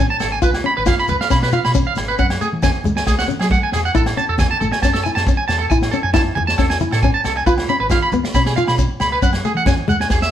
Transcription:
0.00 nylon-string guitar C#4
0.10 clean electric guitar A5
0.20 fingered electric bass G#1, clean electric guitar A4, snare, low agogo, shekere
0.32 clean electric guitar G#5
0.42 fingered electric bass C#2, nylon-string guitar F4, clean electric guitar B4, kick, muted conga, shekere
0.53 snare, low agogo
0.64 nylon-string guitar C#4, clean electric guitar B5
0.77 fingered electric bass G#1, clean electric guitar B4
0.86 nylon-string guitar F4, clean electric guitar F5, kick, snare, high conga, low agogo, shekere
0.98 clean electric guitar B5, snare
1.08 fingered electric bass C#2, clean electric guitar B4, muted nylon-string guitar stroke, muted conga, high conga, shekere
1.21 clean electric guitar F5, snare
1.30 fingered electric bass B2, nylon-string guitar C#4, clean electric guitar B5, kick, snare, low agogo, shekere
1.43 clean electric guitar B4, snare
1.52 nylon-string guitar F4, clean electric guitar F5, shekere
1.64 fingered electric bass B2, clean electric guitar B5, snare, low agogo, shekere
1.74 nylon-string guitar C#4, kick, high conga, shekere
1.87 clean electric guitar F5
1.96 fingered electric bass G#1, muted clean electric guitar stroke, snare, low agogo, shekere
2.08 clean electric guitar B4
2.18 fingered electric bass F#2, nylon-string guitar C#4, clean electric guitar F#5, kick, muted conga, shekere
2.30 snare, low agogo
2.41 nylon-string guitar A3, clean electric guitar G#4, shekere
2.53 fingered electric bass E3
2.63 nylon-string guitar C#4, clean electric guitar G#5, kick, snare, high conga, low conga, low agogo, shekere
2.84 fingered electric bass C#2, nylon-string guitar G#3, muted conga, high conga, shekere
2.96 clean electric guitar G#5, snare, shekere
3.06 fingered electric bass C#2, nylon-string guitar A3, clean electric guitar G#4, kick, snare, muted conga, low agogo, shekere
3.18 clean electric guitar F#5, snare
3.28 nylon-string guitar C#4, muted conga, high conga, shekere
3.39 fingered electric bass F#3, clean electric guitar G#4, snare, low agogo, shekere
3.50 nylon-string guitar A3, clean electric guitar F#5, kick, high conga, shekere
3.63 clean electric guitar G#5
3.72 fingered electric bass E2, clean electric guitar G#4, snare, low agogo, shekere
3.85 clean electric guitar F#5, shekere
3.95 fingered electric bass A1, nylon-string guitar E4, clean electric guitar A4, kick, muted conga, shekere
4.06 snare, low agogo
4.17 nylon-string guitar C#4, clean electric guitar A5, shekere
4.29 fingered electric bass E2, clean electric guitar A4
4.38 clean electric guitar G#5, kick, snare, high conga, low agogo, shekere
4.51 clean electric guitar A5
4.61 fingered electric bass A1, nylon-string guitar A3, clean electric guitar A4, muted conga, high conga, shekere
4.72 clean electric guitar G#5, snare
4.82 fingered electric bass F#2, nylon-string guitar C#4, clean electric guitar A5, kick, snare, muted conga, low agogo, shekere
4.93 clean electric guitar A4, snare
5.04 nylon-string guitar E4, clean electric guitar G#5, muted conga, shekere
5.15 fingered electric bass F#2, clean electric guitar A5, snare, low agogo, shekere
5.26 nylon-string guitar C#4, kick, high conga, shekere
5.37 clean electric guitar G#5
5.48 fingered electric bass E2, clean electric guitar A5, snare, low agogo, shekere
5.59 clean electric guitar A4
5.70 fingered electric bass A1, nylon-string guitar E4, clean electric guitar G#5, kick, muted conga, shekere
5.82 snare, low agogo
5.91 nylon-string guitar C#4, clean electric guitar A4, shekere
6.03 fingered electric bass F#2, clean electric guitar G#5
6.14 nylon-string guitar E4, clean electric guitar A5, kick, snare, high conga, low conga, low agogo, shekere
6.35 fingered electric bass E2, clean electric guitar G#5, muted nylon-string guitar stroke, muted conga, high conga
6.47 clean electric guitar A5, snare
6.57 fingered electric bass E2, nylon-string guitar C#4, clean electric guitar A4, kick, snare, low agogo, shekere
6.70 clean electric guitar G#5, snare
6.80 nylon-string guitar E4, muted conga, high conga, shekere
6.92 fingered electric bass A2, clean electric guitar A4, snare, low agogo, shekere
7.03 nylon-string guitar C#4, clean electric guitar G#5, kick, high conga, shekere
7.14 clean electric guitar A5
7.24 fingered electric bass C2, clean electric guitar A4, snare, low agogo, shekere
7.37 clean electric guitar G#5
7.46 fingered electric bass C#2, nylon-string guitar F4, clean electric guitar B4, kick, shekere
7.58 snare, low agogo
7.68 nylon-string guitar C#4, clean electric guitar B5, shekere
7.80 fingered electric bass G#1, clean electric guitar B4
7.90 nylon-string guitar F4, clean electric guitar F5, kick, snare, high conga, low agogo, shekere
8.02 clean electric guitar B5
8.12 fingered electric bass C#2, nylon-string guitar B3, muted clean electric guitar stroke, muted conga, high conga, shekere
8.24 muted clean electric guitar stroke, snare
8.34 fingered electric bass B2, nylon-string guitar C#4, clean electric guitar B5, kick, snare, muted conga, low agogo, shekere
8.46 clean electric guitar G#4, snare
8.56 nylon-string guitar F4, clean electric guitar F5, muted conga, shekere
8.68 fingered electric bass B2, clean electric guitar B5, snare, low agogo, shekere
8.78 nylon-string guitar C#4, kick, high conga, shekere
9.00 fingered electric bass C#2, clean electric guitar B5, snare, low agogo, shekere
9.12 clean electric guitar B4
9.22 fingered electric bass F#2, nylon-string guitar C#4, clean electric guitar F#5, kick, muted conga, shekere
9.33 snare, low agogo
9.45 nylon-string guitar A3, clean electric guitar G#4, shekere
9.55 fingered electric bass E3, clean electric guitar F#5, shekere
9.66 nylon-string guitar C#4, clean electric guitar G#5, kick, snare, high conga, low conga, low agogo, shekere
9.88 fingered electric bass D#2, nylon-string guitar G#3, clean electric guitar F#5, muted conga, high conga, shekere
10.00 clean electric guitar G#5, snare
10.10 fingered electric bass E2, clean electric guitar G#4, muted nylon-string guitar stroke, kick, snare, low agogo, shekere
10.22 clean electric guitar E5, snare

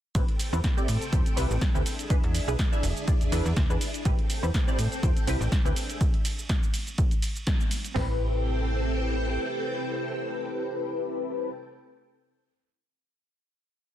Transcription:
0.15 fm bass A1, analog polysynth C4 E4 G4 B4, string machine C4 A4 G5, kick, closed hi-hat, ride, shaker
0.28 closed hi-hat
0.39 open hi-hat, ride, shaker
0.53 fm bass E2, analog polysynth C4 E4 G4 B4, shaker
0.64 kick, snare, closed hi-hat, ride, shaker
0.77 analog polysynth C4 E4 G4 D5, shaker
0.88 fm bass A2, open hi-hat, ride, shaker
1.01 closed hi-hat, shaker
1.12 fm bass E2, analog polysynth C4 E4 G4 C5, kick, closed hi-hat, ride, shaker
1.26 closed hi-hat, shaker
1.36 fm bass C2, analog polysynth C4 E4 G4 B4, open hi-hat, ride, shaker
1.51 fm bass A1, shaker
1.61 kick, snare, closed hi-hat, ride, shaker
1.74 fm bass D2, analog polysynth C4 E4 G4 B4, shaker
1.86 string machine D4 G#4 E5, open hi-hat, ride, shaker
1.99 closed hi-hat, shaker
2.10 fm bass E2, analog polysynth D4 E4 G#4 B4, kick, closed hi-hat, ride, shaker
2.24 fm bass E2, closed hi-hat
2.35 open hi-hat, ride, shaker
2.48 fm bass B1, analog polysynth D4 E4 G#4 B4, shaker
2.59 kick, snare, closed hi-hat, ride, shaker
2.72 analog polysynth D4 E4 G#4 E5, shaker
2.83 fm bass E1, open hi-hat, ride, shaker
2.97 closed hi-hat, shaker
3.07 analog polysynth D4 E4 G#4 D5, kick, closed hi-hat, ride, shaker
3.21 fm bass E2, closed hi-hat, shaker
3.32 fm bass E2, analog polysynth D4 E4 G#4 B4, open hi-hat, ride, shaker
3.45 fm bass E2, shaker
3.57 fm bass D2, kick, snare, closed hi-hat, ride, shaker
3.69 fm bass E2, analog polysynth D4 E4 G#4 B4, shaker
3.81 open hi-hat, ride, shaker
3.94 closed hi-hat, shaker
4.05 fm bass A1, string machine C4 A4 G5, analog polysynth C4 E4 G4 B4, kick, closed hi-hat, ride, shaker
4.19 closed hi-hat
4.30 open hi-hat, ride, shaker
4.43 fm bass E2, analog polysynth C4 E4 G4 B4, shaker
4.54 kick, snare, closed hi-hat, ride, shaker
4.67 analog polysynth C4 E4 G4 D5, shaker
4.79 fm bass A2, open hi-hat, ride, shaker
4.92 closed hi-hat, shaker
5.03 fm bass E2, analog polysynth C4 E4 G4 C5, kick, closed hi-hat, ride, shaker
5.17 closed hi-hat, shaker
5.27 fm bass C2, analog polysynth C4 E4 G4 B4, open hi-hat, ride, shaker
5.41 fm bass A1, shaker
5.52 kick, snare, closed hi-hat, ride, shaker
5.65 fm bass D2, analog polysynth C4 E4 G4 B4, shaker
5.76 string machine D4 G#4 E5, open hi-hat, ride, shaker
5.90 closed hi-hat, shaker
6.01 kick, closed hi-hat, ride, shaker
6.14 closed hi-hat
6.25 open hi-hat, ride, shaker
6.39 shaker
6.49 kick, snare, closed hi-hat, ride, shaker
6.63 shaker
6.74 open hi-hat, ride, shaker
6.87 closed hi-hat, shaker
6.98 kick, closed hi-hat, ride, shaker
7.11 closed hi-hat, shaker
7.22 open hi-hat, ride, shaker
7.36 closed hi-hat, shaker
7.47 kick, snare, closed hi-hat, ride, shaker
7.61 shaker
7.71 open hi-hat, ride, shaker
7.84 closed hi-hat, shaker
7.94 fm bass A1, analog polysynth C4 E4 G4 B4, string machine C4 A4 G5, snare, floor tom, open hi-hat

